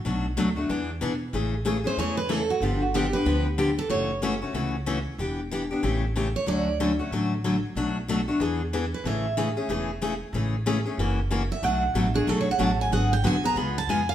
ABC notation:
X:1
M:4/4
L:1/8
Q:"Swing" 1/4=186
K:A
V:1 name="Steel-string acoustic guitar"
z8 | z3 =c ^c B A F | =F ^F =G B2 z2 A | c2 z6 |
z6 z c | d2 z6 | z6 z B | e2 z6 |
z6 z e | f2 z G (3A c f a g | f =g ^g _b =b a g ^e |]
V:2 name="Steel-string acoustic guitar"
[B,,F,A,DF] z [B,,F,A,DF] [A,DF] [E,B,DG] z [E,B,DG] z | [C,E,A,CG] z [C,E,A,CG] [A,CG] [C,E,A,CG] z [C,E,A,CG] z | [D,=F,B,D=G] z [D,F,B,DG] [B,DG] [D,F,B,DG] z [D,F,B,DG] z | [C,E,A,CF] z [C,E,A,CF] [A,CF] [C,E,A,CF] z [C,E,A,CF] z |
[E,B,D=G] z [E,B,DG] [B,DG] [C,E,A,CG] z [C,E,A,CG] z | [D,F,A,CF] z [D,F,A,CF] [A,CF] [D,F,A,CF] z [D,F,A,CF] z | [B,,F,A,DF] z [B,,F,A,DF] [A,DF] [E,B,DG] z [E,B,DG] z | [C,E,A,CG] z [C,E,A,CG] [A,CG] [C,E,A,CG] z [C,E,A,CG] z |
[C,E,A,CG] z [C,E,A,CG] [A,CG] [C,E,^A,CF] z [C,E,A,CF] z | [B,,F,A,DF] z [B,,F,A,DF] [A,DF] [B,,F,A,DF] z [B,,F,A,DF] z | [D,F,B,FG] z [D,F,B,FG] [B,FG] [C,G,B,^EG] z [C,G,B,EG] z |]
V:3 name="Upright bass" clef=bass
B,,,2 D,,2 E,,2 B,,2 | A,,,4 E,,4 | =G,,,4 D,,4 | F,,,4 C,,4 |
E,,,4 A,,,4 | D,,4 A,,,4 | B,,,4 E,,4 | A,,,4 E,,,4 |
A,,,4 F,,,4 | B,,,2 A,,,2 B,,,2 A,,,2 | G,,,2 B,,,2 C,,2 ^E,,2 |]